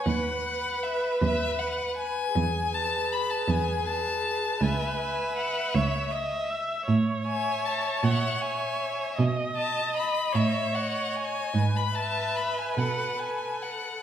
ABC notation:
X:1
M:6/8
L:1/16
Q:3/8=52
K:E
V:1 name="Violin"
f4 e2 e2 f2 g2- | g2 a2 b a g2 a4 | g4 f2 e2 z4 | z2 g2 a2 f2 g4 |
z2 a2 b2 e2 f2 g2- | g b a2 b g f2 g2 f2 |]
V:2 name="Violin"
B2 B6 B4 | z2 B6 B4 | e2 e6 e4 | z2 e4 e2 e4 |
z2 d4 d2 d4 | z2 e4 A2 A4 |]
V:3 name="Viola"
B12 | G12 | B6 c2 d2 e2 | c12 |
d6 c6 | B12 |]
V:4 name="Cello" clef=bass
D,,6 D,,6 | E,,6 E,,6 | C,,6 C,,6 | A,,6 ^A,,6 |
B,,6 A,,6 | G,,6 B,,6 |]